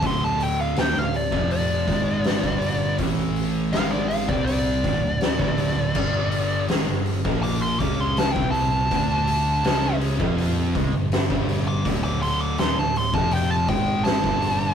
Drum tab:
CC |----------------|----------------|x---------------|----------------|
HH |o-o-o-o-o-o-o-o-|o-o-o-o-o-o-o-o-|--o-o-o-o-o-o-o-|o-o-o-o-o-o-o-o-|
SD |----o--o----o---|----o-------o---|----o--o----o---|----o-------o---|
BD |o------o--o--o--|o------o--o--o--|o------o--o--o--|o------o--o--o--|

CC |----------------|
HH |o-o-o-o-o-o-o-o-|
SD |----o-------o---|
BD |o------o--o--o--|